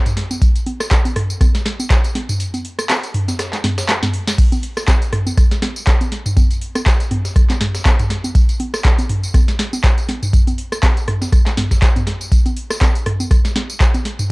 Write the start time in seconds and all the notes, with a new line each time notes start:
0.06 closed hi-hat, mid tom, tambourine
0.17 snare, closed hi-hat, open hi-hat
0.31 closed hi-hat, tambourine, high conga
0.42 kick, closed hi-hat, tambourine
0.56 closed hi-hat, tambourine
0.66 closed hi-hat, open hi-hat, high conga
0.80 cross-stick, snare, tambourine
0.91 kick, snare, clap, closed hi-hat, tambourine
1.05 open hi-hat, tambourine, high conga
1.16 cross-stick, closed hi-hat, mid tom, open hi-hat
1.30 closed hi-hat, tambourine
1.41 kick, cross-stick, closed hi-hat, tambourine, high conga
1.55 snare, closed hi-hat, tambourine
1.66 snare, closed hi-hat, open hi-hat
1.80 closed hi-hat, tambourine, high conga
1.90 kick, snare, clap, closed hi-hat, tambourine
2.04 closed hi-hat, tambourine
2.15 snare, closed hi-hat, open hi-hat, high conga
2.29 closed hi-hat, mid tom, tambourine
2.40 closed hi-hat, tambourine
2.54 closed hi-hat, open hi-hat, tambourine, high conga
2.65 closed hi-hat, open hi-hat
2.79 cross-stick, closed hi-hat, tambourine
2.90 snare, clap, closed hi-hat, open hi-hat, tambourine, high conga
3.03 closed hi-hat, tambourine
3.14 closed hi-hat, mid tom, open hi-hat
3.28 snare, closed hi-hat, tambourine, high conga
3.39 cross-stick, snare, closed hi-hat, tambourine
3.53 snare, clap, closed hi-hat, tambourine
3.64 snare, closed hi-hat, mid tom, open hi-hat, high conga
3.78 snare, closed hi-hat, tambourine
3.89 snare, clap, closed hi-hat, tambourine
4.03 snare, closed hi-hat, mid tom, tambourine, high conga
4.13 closed hi-hat, open hi-hat
4.27 snare, closed hi-hat, tambourine
4.38 kick, closed hi-hat, tambourine, crash
4.52 closed hi-hat, tambourine, high conga
4.63 closed hi-hat, open hi-hat
4.77 cross-stick, snare, tambourine
4.88 kick, snare, clap, closed hi-hat, tambourine, high conga
5.02 open hi-hat, tambourine
5.13 cross-stick, closed hi-hat, mid tom, open hi-hat
5.27 closed hi-hat, tambourine, high conga
5.37 kick, cross-stick, closed hi-hat, tambourine
5.51 snare, closed hi-hat, tambourine
5.62 snare, closed hi-hat, open hi-hat, high conga
5.76 closed hi-hat, tambourine
5.87 kick, snare, clap, closed hi-hat, tambourine
6.01 closed hi-hat, tambourine, high conga
6.12 snare, closed hi-hat, open hi-hat
6.26 closed hi-hat, mid tom, tambourine
6.37 kick, closed hi-hat, tambourine, high conga
6.51 closed hi-hat, open hi-hat, tambourine
6.61 closed hi-hat, open hi-hat
6.75 cross-stick, closed hi-hat, tambourine, high conga
6.86 kick, snare, clap, closed hi-hat, open hi-hat, tambourine
7.00 closed hi-hat, tambourine
7.11 closed hi-hat, mid tom, open hi-hat, high conga
7.25 snare, closed hi-hat, tambourine
7.36 kick, cross-stick, closed hi-hat, tambourine
7.50 snare, clap, closed hi-hat, tambourine, high conga
7.61 snare, closed hi-hat, mid tom, open hi-hat
7.75 snare, closed hi-hat, tambourine
7.85 kick, snare, clap, closed hi-hat, tambourine, high conga
7.99 closed hi-hat, mid tom, tambourine
8.10 snare, closed hi-hat, open hi-hat
8.24 closed hi-hat, tambourine, high conga
8.35 kick, closed hi-hat, tambourine
8.49 closed hi-hat, tambourine
8.60 closed hi-hat, open hi-hat, high conga
8.74 cross-stick, snare, tambourine
8.85 kick, snare, clap, closed hi-hat, tambourine
8.99 open hi-hat, tambourine, high conga
9.09 closed hi-hat, mid tom, open hi-hat
9.23 closed hi-hat, tambourine
9.34 kick, cross-stick, closed hi-hat, tambourine, high conga
9.48 snare, closed hi-hat, tambourine
9.59 snare, closed hi-hat, open hi-hat
9.73 closed hi-hat, tambourine, high conga
9.84 kick, snare, clap, closed hi-hat, tambourine
9.98 closed hi-hat, tambourine
10.09 snare, closed hi-hat, open hi-hat, high conga
10.23 closed hi-hat, mid tom, tambourine
10.33 kick, closed hi-hat, tambourine
10.47 closed hi-hat, open hi-hat, tambourine, high conga
10.58 closed hi-hat, open hi-hat
10.72 cross-stick, closed hi-hat, tambourine
10.83 kick, snare, clap, closed hi-hat, open hi-hat, tambourine, high conga
10.97 closed hi-hat, tambourine
11.08 cross-stick, closed hi-hat, mid tom, open hi-hat
11.22 snare, closed hi-hat, tambourine, high conga
11.32 kick, cross-stick, closed hi-hat, tambourine
11.46 snare, clap, closed hi-hat, tambourine
11.57 snare, closed hi-hat, mid tom, open hi-hat, high conga
11.71 kick, snare, closed hi-hat, tambourine
11.82 kick, snare, clap, closed hi-hat, tambourine
11.96 closed hi-hat, mid tom, tambourine, high conga
12.07 snare, closed hi-hat, open hi-hat
12.21 closed hi-hat, tambourine
12.32 kick, closed hi-hat, tambourine
12.46 closed hi-hat, tambourine, high conga
12.56 closed hi-hat, open hi-hat
12.70 cross-stick, snare, tambourine
12.81 kick, snare, clap, closed hi-hat, tambourine, high conga
12.95 open hi-hat, tambourine
13.06 cross-stick, closed hi-hat, mid tom, open hi-hat
13.20 closed hi-hat, tambourine, high conga
13.31 kick, cross-stick, closed hi-hat, tambourine
13.45 snare, closed hi-hat, tambourine
13.56 snare, closed hi-hat, open hi-hat, high conga
13.70 closed hi-hat, tambourine
13.80 kick, snare, clap, closed hi-hat, tambourine
13.94 closed hi-hat, tambourine, high conga
14.05 snare, closed hi-hat, open hi-hat
14.19 closed hi-hat, mid tom, tambourine